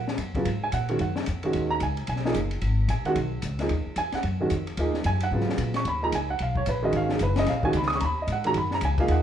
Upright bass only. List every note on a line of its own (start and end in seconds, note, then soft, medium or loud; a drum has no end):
0.00 0.17 A#2 medium
0.18 0.45 F#2 medium
0.45 0.72 G#2 medium
0.73 0.99 A#2 medium
1.00 1.26 F#2 medium
1.28 1.53 F2 medium
1.54 1.80 D#2 medium
1.81 2.07 C#2 medium
2.08 2.34 B1 medium
2.35 2.61 F#1 medium
2.62 2.88 G#1 medium
2.88 3.04 A#1 medium
3.05 muted upright bass stroke soft
3.16 3.42 B1 medium
3.43 3.69 C#2 medium
3.70 3.85 D#2 medium
3.86 muted upright bass stroke soft
3.96 4.12 F2 medium
4.13 muted upright bass stroke soft
4.24 4.50 F#2 medium
4.51 4.77 F2 medium
4.77 5.04 D#2 medium
5.05 5.31 F#2 medium
5.31 5.57 G#2 medium
5.58 5.84 A#2 medium
5.85 6.11 D#2 medium
6.13 6.39 C#2 medium
6.40 6.66 B1 medium
6.67 6.92 A#1 medium
6.93 7.19 G#1 medium
7.21 7.47 F#1 medium
7.47 7.73 A#1 medium
7.74 8.00 C#2 medium
8.01 8.27 D#2 medium
8.27 8.54 G#2 medium
8.55 8.81 F#2 medium
8.82 9.08 C#2 medium
9.08 9.22 D#2 medium